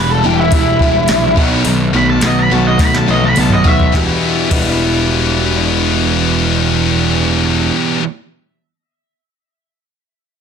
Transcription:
Already playing: picked electric bass E1, distorted electric guitar E2 B2 E3 G3, steel-string acoustic guitar E2 G3 D4
0.11 lead electric guitar A4
0.24 picked electric bass E1, distorted electric guitar E2 B2 E3 G3, steel-string acoustic guitar E4, lead electric guitar G4
0.40 lead electric guitar E4
0.52 picked electric bass E1, distorted electric guitar E2 B2 E3 G3, steel-string acoustic guitar G3, lead electric guitar E4, kick, open hi-hat
0.80 picked electric bass E1, distorted electric guitar E2 B2 E3 G3, steel-string acoustic guitar E4, kick
1.08 picked electric bass A#1, distorted electric guitar E2 B2 E3 G3, steel-string acoustic guitar D4, snare, open hi-hat
1.36 picked electric bass B1, distorted electric guitar B2 D#3 F#3 B3, steel-string acoustic guitar B2, kick
1.65 picked electric bass B1, distorted electric guitar B2 D#3 F#3, steel-string acoustic guitar B2, open hi-hat
1.93 picked electric bass B1, distorted electric guitar B2 D#3 F#3, steel-string acoustic guitar A3, lead electric guitar B5
2.10 lead electric guitar A5
2.21 picked electric bass B1, distorted electric guitar B2 D#3 F#3, steel-string acoustic guitar B3, snare, open hi-hat
2.26 lead electric guitar D#5
2.39 lead electric guitar B5
2.51 picked electric bass B1, distorted electric guitar B2 D#3 F#3, steel-string acoustic guitar F#4, lead electric guitar A5
2.67 lead electric guitar D#5
2.78 picked electric bass B1, distorted electric guitar B2 D#3 F#3, steel-string acoustic guitar A3, lead electric guitar B5, kick, snare, open hi-hat
2.95 lead electric guitar A5, snare
3.07 picked electric bass B1, distorted electric guitar B2 D#3 F#3, steel-string acoustic guitar F#4, lead electric guitar D#5, high tom
3.22 lead electric guitar B5, high tom
3.35 picked electric bass B1, distorted electric guitar B2 D#3 F#3, steel-string acoustic guitar B3, open hi-hat, mid tom
3.40 lead electric guitar A5
3.50 lead electric guitar D#5, mid tom
3.64 picked electric bass B1, distorted electric guitar B2 D#3 F#3, steel-string acoustic guitar F#4, lead electric guitar E5, floor tom
3.79 floor tom
3.92 picked electric bass E1, steel-string acoustic guitar E2 B2 E3 G3 D4, distorted electric guitar E2 B2 E3 G3 B3 E4, kick, snare
3.96 distorted electric guitar E3, steel-string acoustic guitar E4
4.49 picked electric bass E1, distorted electric guitar E2 B2 E3 G3, steel-string acoustic guitar E2 B2 E3 G3, kick, crash
4.53 distorted electric guitar B3 E4, steel-string acoustic guitar D4 E4

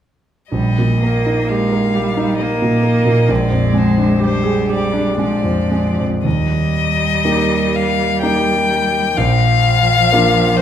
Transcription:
0.51 grand piano A#1, cello G3, violin D#5
0.78 grand piano A#2
1.01 cello A#3, grand piano A#3
1.26 grand piano D#4
1.49 cello G#3, grand piano G4, violin F5
1.72 grand piano A#4
1.95 cello G3, grand piano G4
2.17 grand piano D#4
2.39 grand piano A#3, cello A#3, violin D#5
2.62 grand piano A#2
2.83 grand piano A#3
3.05 grand piano A#2
3.29 grand piano A#1, cello G#3, violin D5
3.50 grand piano F2
3.74 grand piano G#3
3.78 violin C5
3.98 grand piano D4
4.20 cello G3, grand piano G4
4.24 violin C5
4.44 grand piano G#4
4.69 grand piano G4
4.73 violin D5
4.94 grand piano D4
5.18 cello F3, grand piano G#3
5.23 violin D5
5.44 grand piano F2
5.71 grand piano G#3
5.99 grand piano F2
6.24 grand piano D#2, cello G3, violin D#5
7.25 grand piano A#3 D#4 G4
7.76 violin F5
8.22 grand piano A#3 D#4 G4, violin G5
9.15 grand piano A#1, cello F3, violin F5
10.12 grand piano A#3 D4 F4
10.57 violin C5

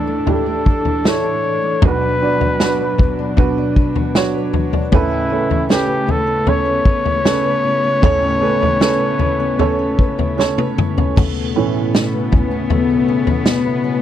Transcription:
Already playing: upright piano A1 A2 D4 E4 A4, steel-string acoustic guitar A2 E3 E4 A4, string section A2 E3 D4, flugelhorn A4
0.07 steel-string acoustic guitar A3
0.26 steel-string acoustic guitar A2, upright piano D4 E4 G4, floor tom
0.31 flugelhorn A4
0.46 steel-string acoustic guitar A3
0.65 steel-string acoustic guitar A4, kick
0.85 steel-string acoustic guitar E4, floor tom
1.04 steel-string acoustic guitar E3, upright piano D4 E4 A4, snare
1.08 flugelhorn C#5
1.24 steel-string acoustic guitar A4
1.44 steel-string acoustic guitar E4
1.62 steel-string acoustic guitar A3
1.82 upright piano B1 B2 D4 F#4 B4, steel-string acoustic guitar B2, string section B2 F#3, kick, floor tom
1.87 flugelhorn B4
2.02 steel-string acoustic guitar D4
2.22 upright piano D4 F#4 D5
2.41 steel-string acoustic guitar F#4, floor tom
2.60 steel-string acoustic guitar F#3, upright piano D4 F#4 B4, snare
2.80 steel-string acoustic guitar B4
2.98 steel-string acoustic guitar F#4, kick, floor tom
3.19 steel-string acoustic guitar D4
3.37 steel-string acoustic guitar B2, upright piano D4 F#4 B4, kick, floor tom
3.58 steel-string acoustic guitar D4
3.76 steel-string acoustic guitar B4, kick
3.96 steel-string acoustic guitar F#4, floor tom
4.15 steel-string acoustic guitar F#3, upright piano D4 F#4 C#5, snare
4.34 steel-string acoustic guitar B4
4.53 steel-string acoustic guitar F#4, floor tom
4.73 steel-string acoustic guitar D4, floor tom
4.92 upright piano A1 A2 C#4 A4 B4, string section C#3 A3 B3, steel-string acoustic guitar A3, flugelhorn E4, kick, floor tom
5.11 steel-string acoustic guitar C#4
5.30 upright piano C#4 A4 B4, steel-string acoustic guitar B4
5.50 steel-string acoustic guitar E4, floor tom
5.69 steel-string acoustic guitar C#4, upright piano C#4 A4 B4, flugelhorn G4, snare
5.87 steel-string acoustic guitar B4
6.07 steel-string acoustic guitar E4, floor tom
6.11 flugelhorn A4
6.27 steel-string acoustic guitar C#4
6.47 steel-string acoustic guitar A3, upright piano C#4 A4 C#5, flugelhorn C#5, floor tom
6.65 steel-string acoustic guitar C#4
6.85 steel-string acoustic guitar B4, kick
7.05 steel-string acoustic guitar E4, floor tom
7.25 upright piano C#4 A4 B4, steel-string acoustic guitar C#4, snare
7.44 steel-string acoustic guitar B4
7.63 steel-string acoustic guitar E4
7.84 steel-string acoustic guitar C#4
8.02 upright piano A1 A2 C#4 A4 C#5, steel-string acoustic guitar A3, kick, floor tom
8.22 steel-string acoustic guitar C#4
8.41 upright piano C#4 A4 B4, steel-string acoustic guitar B4
8.61 steel-string acoustic guitar E4, floor tom
8.81 upright piano C#4 A4 B4, snare
9.01 steel-string acoustic guitar B4
9.19 steel-string acoustic guitar E4, floor tom
9.40 steel-string acoustic guitar C#4
9.59 steel-string acoustic guitar A3, upright piano C#4 A4 C#5, floor tom
9.79 steel-string acoustic guitar C#4
9.99 steel-string acoustic guitar B4, kick
10.18 steel-string acoustic guitar E4, floor tom
10.37 upright piano C#4 A4 C#5, steel-string acoustic guitar C#4, snare
10.58 steel-string acoustic guitar B4, high tom
10.78 steel-string acoustic guitar E4, mid tom
10.97 steel-string acoustic guitar C#4, floor tom
11.16 cello section B2 B3, string section C#3 A3 B3, steel-string acoustic guitar A3, kick, floor tom, crash
11.36 steel-string acoustic guitar E4
11.55 upright piano A2 E3 C#4, steel-string acoustic guitar C#4
11.74 steel-string acoustic guitar E4
11.94 steel-string acoustic guitar C#4, snare
12.13 steel-string acoustic guitar B4
12.32 steel-string acoustic guitar C#4, kick, floor tom
12.51 steel-string acoustic guitar E4
12.70 steel-string acoustic guitar A3, floor tom
12.90 steel-string acoustic guitar E4
13.08 steel-string acoustic guitar C#4
13.27 steel-string acoustic guitar E4, floor tom
13.46 steel-string acoustic guitar C#4, snare
13.65 steel-string acoustic guitar B4
13.84 steel-string acoustic guitar C#4

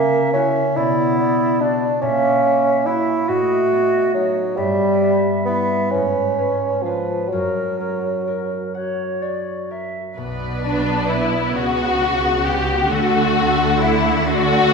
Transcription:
Already playing: harp C#3 A#3, bassoon A#3, clarinet C#4, flute E5
0.32 bassoon C#4, harp E4 F#4, flute E5
0.76 harp B2, clarinet B3, bassoon E4, flute D5
1.18 harp B3, flute D5
1.60 harp D4 F#4, bassoon D4, flute D5
2.01 harp A#2, clarinet A#3, bassoon C#4, flute E5
2.43 harp C#4, flute E5
2.86 bassoon E4, harp E4 F#4, flute E5
3.28 harp A2, clarinet A3, bassoon F#4, flute D#5
3.71 harp B3, flute D#5
4.14 bassoon F#3, harp D#4 F#4, flute D#5
4.56 harp G2, bassoon G3, clarinet G3, flute E5
5.01 harp B3, flute E5
5.45 bassoon B3, harp E4 B4, flute E5
5.91 harp G#2, clarinet G#3, bassoon C#4, flute B4
6.36 harp C#4, flute B4
6.83 bassoon F3, harp F4 B4, flute B4
7.30 harp F#2, bassoon F#3, clarinet F#4, flute A#4
7.79 harp C#4, flute A#4
8.26 flute A#4, harp A#4
8.73 clarinet F#4, flute C#5, harp F#5
9.21 harp C#5, flute D5
9.71 harp A#4, flute E5
10.16 double bass section B1, cello section B2, harp B2, viola section B3 B4, violin section D5
10.64 harp B3, violin section D4
11.09 harp D4, violin section E4
11.54 double bass section C#2, cello section C#3, viola section F#4, violin section F#4 F#5, harp B4
12.02 harp D4
12.45 harp B3, violin section G4
12.90 double bass section D2, cello section D3, harp D3, viola section A3 A4, violin section F#4 F#5
13.38 harp C4
13.81 harp D4, violin section E4
14.25 violin section F#4 D5, viola section A4, harp C5

